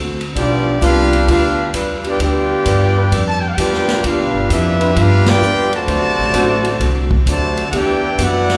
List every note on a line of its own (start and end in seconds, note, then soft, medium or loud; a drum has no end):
0.00 0.34 D2 medium
0.00 0.22 D3 medium
0.00 0.22 A3 medium
0.00 0.23 C4 medium
0.00 0.23 F#4 medium
0.21 ride medium
0.35 0.80 B1 medium
0.35 0.78 F3 medium
0.35 0.68 G3 soft
0.35 0.78 B3 loud
0.35 0.79 B3 medium
0.35 0.78 D4 medium
0.35 0.68 D4 medium
0.35 0.68 F4 medium
0.35 0.79 F4 medium
0.35 0.79 G4 medium
0.35 0.69 B4 medium
0.35 0.79 D5 loud
0.35 kick soft
0.35 ride medium
0.81 1.26 C2 loud
0.81 1.14 G3 medium
0.81 1.25 B3 loud
0.81 1.24 D4 loud
0.81 1.14 D4 medium
0.81 1.26 D4 loud
0.81 1.14 F4 medium
0.81 1.24 F4 loud
0.81 1.26 G4 loud
0.81 1.14 B4 medium
0.81 1.25 B4 loud
0.81 1.25 F5 loud
0.81 kick soft
0.81 hi-hat pedal medium
0.81 ride medium
1.13 ride medium
1.28 1.72 D2 medium
1.28 1.60 G3 medium
1.28 1.71 B3 medium
1.28 1.71 D4 medium
1.28 1.61 D4 medium
1.28 1.72 D4 loud
1.28 1.71 F4 medium
1.28 1.61 F4 medium
1.28 1.72 G4 loud
1.28 1.61 B4 medium
1.28 1.72 B4 loud
1.28 1.72 F5 loud
1.28 kick soft
1.28 ride medium
1.73 2.18 E2 loud
1.73 2.06 G3 medium
1.73 2.45 G3 medium
1.73 2.45 D4 medium
1.73 2.07 D4 medium
1.73 2.45 F4 medium
1.73 2.07 F4 medium
1.73 2.45 B4 loud
1.73 2.07 B4 medium
1.73 kick soft
1.73 hi-hat pedal medium
1.73 ride medium
2.04 2.19 B3 medium
2.04 2.19 D4 medium
2.04 2.20 F4 medium
2.04 2.19 G4 medium
2.04 2.21 G5 loud
2.04 ride medium
2.08 2.21 B4 medium
2.08 2.21 D5 medium
2.19 2.64 D2 loud
2.19 2.52 G3 soft
2.19 3.21 B3 loud
2.19 3.21 D4 medium
2.19 2.53 D4 medium
2.19 3.22 F4 medium
2.19 2.53 F4 medium
2.19 3.21 G4 loud
2.19 3.22 B4 medium
2.19 2.53 B4 medium
2.19 3.22 D5 medium
2.19 3.22 G5 loud
2.19 kick soft
2.19 ride medium
2.65 3.10 G2 loud
2.65 2.98 G3 medium
2.65 2.98 D4 medium
2.65 2.99 F4 medium
2.65 2.99 B4 medium
2.65 kick soft
2.65 hi-hat pedal medium
2.65 ride medium
2.97 3.07 G3 medium
2.97 3.07 D4 medium
2.97 3.07 F4 medium
2.97 3.07 B4 loud
3.12 3.56 F2 medium
3.12 3.44 G3 medium
3.12 3.45 D4 medium
3.12 3.45 F4 medium
3.12 3.46 B4 medium
3.12 kick soft
3.12 ride medium
3.28 3.38 A5 loud
3.40 3.47 G5 medium
3.48 3.53 F5 medium
3.54 4.02 E2 medium
3.54 4.01 D4 medium
3.54 3.59 G5 medium
3.54 kick soft
3.54 hi-hat pedal medium
3.54 ride medium
3.58 3.90 G3 medium
3.58 4.01 B3 medium
3.58 3.91 D4 medium
3.58 3.91 F4 medium
3.58 4.02 F4 medium
3.58 4.01 G4 medium
3.58 3.91 B4 medium
3.58 4.02 B4 medium
3.58 4.02 D5 medium
3.58 4.02 G5 loud
3.74 snare soft
3.88 snare medium
3.88 ride medium
4.03 4.21 D2 medium
4.03 4.36 G3 medium
4.03 4.49 B3 loud
4.03 4.50 D4 medium
4.03 4.36 D4 medium
4.03 4.51 D4 medium
4.03 4.50 F4 loud
4.03 4.37 F4 medium
4.03 4.37 B4 medium
4.03 4.51 B4 medium
4.03 4.51 F5 loud
4.03 kick soft
4.03 ride medium
4.07 4.51 G4 medium
4.19 4.33 B1 medium
4.34 4.48 G1 medium
4.50 4.95 F2 loud
4.50 4.96 F3 medium
4.50 4.83 G3 medium
4.50 4.96 B3 medium
4.50 4.97 D4 medium
4.50 4.83 D4 medium
4.50 4.96 E4 medium
4.50 4.83 F4 medium
4.50 4.97 G4 medium
4.50 4.97 B4 medium
4.50 4.84 B4 medium
4.50 4.97 E5 loud
4.50 kick soft
4.50 hi-hat pedal medium
4.50 ride medium
4.80 4.91 G3 loud
4.80 4.91 D4 medium
4.80 4.91 F4 loud
4.80 4.91 B4 loud
4.80 ride medium
4.96 5.41 G2 loud
4.96 5.29 G3 medium
4.96 5.27 B3 medium
4.96 5.27 D4 medium
4.96 5.29 D4 medium
4.96 5.28 D4 loud
4.96 5.27 F4 medium
4.96 5.29 F4 medium
4.96 5.28 G4 loud
4.96 5.27 B4 loud
4.96 5.30 B4 medium
4.96 5.28 F5 loud
4.96 kick soft
4.96 ride medium
5.26 5.74 B3 medium
5.26 5.73 D4 loud
5.26 5.73 F4 loud
5.26 5.73 G4 loud
5.26 5.74 B4 loud
5.26 5.73 D5 loud
5.26 5.74 G5 loud
5.26 snare medium
5.26 ride medium
5.41 5.86 E2 medium
5.41 5.74 G3 medium
5.41 5.75 D4 medium
5.41 5.75 F4 medium
5.41 5.75 B4 medium
5.41 hi-hat pedal medium
5.73 7.02 C3 loud
5.73 7.02 F#3 medium
5.73 7.02 A3 loud
5.73 7.03 F#4 loud
5.73 7.02 C5 loud
5.73 7.03 D5 loud
5.73 7.03 A5 loud
5.73 ride medium
5.86 6.05 D2 medium
5.86 6.20 D3 medium
5.86 6.08 A3 medium
5.86 6.21 A3 medium
5.86 6.21 C4 soft
5.86 6.08 D4 medium
5.86 6.08 F#4 medium
5.86 6.21 F#4 medium
5.86 6.08 C5 medium
5.86 kick soft
5.86 ride medium
6.03 6.18 C2 medium
6.19 6.33 A1 medium
6.32 6.78 A1 loud
6.32 6.66 D3 medium
6.32 6.54 A3 medium
6.32 6.66 A3 medium
6.32 6.67 C4 medium
6.32 6.54 D4 loud
6.32 6.54 F#4 loud
6.32 6.67 F#4 medium
6.32 6.54 C5 loud
6.32 kick soft
6.32 hi-hat pedal medium
6.32 ride medium
6.64 ride medium
6.80 7.25 C2 loud
6.80 7.13 D3 medium
6.80 7.13 A3 medium
6.80 7.13 C4 medium
6.80 7.14 F#4 medium
6.80 kick soft
6.80 ride medium
7.11 kick medium
7.26 7.71 D2 loud
7.26 7.65 C3 medium
7.26 7.59 D3 medium
7.26 7.65 F#3 medium
7.26 7.59 A3 medium
7.26 7.65 A3 medium
7.26 7.59 C4 medium
7.26 7.59 F#4 medium
7.26 7.67 F#4 medium
7.26 7.67 C5 medium
7.26 7.67 D5 medium
7.26 7.67 A5 loud
7.26 kick soft
7.26 hi-hat pedal medium
7.26 ride medium
7.57 ride medium
7.70 8.17 E2 medium
7.70 8.04 E3 medium
7.70 8.05 B3 soft
7.70 8.18 B3 loud
7.70 8.19 D4 loud
7.70 8.05 D4 medium
7.70 8.19 G4 loud
7.70 7.73 F#5 medium
7.70 kick soft
7.70 ride medium
7.74 8.20 E4 medium
7.74 8.05 G4 medium
7.74 8.21 B4 medium
7.74 8.20 D5 medium
7.74 8.20 G5 loud
8.18 8.57 F#2 loud
8.18 8.50 E3 medium
8.18 8.50 B3 medium
8.18 8.57 B3 loud
8.18 8.51 D4 medium
8.18 8.57 D4 loud
8.18 8.57 F#4 medium
8.18 8.51 G4 medium
8.18 8.57 B4 medium
8.18 8.57 D5 loud
8.18 kick soft
8.18 hi-hat pedal medium
8.18 ride medium
8.22 8.57 E4 medium
8.22 8.57 F#5 loud
8.50 snare medium
8.50 ride medium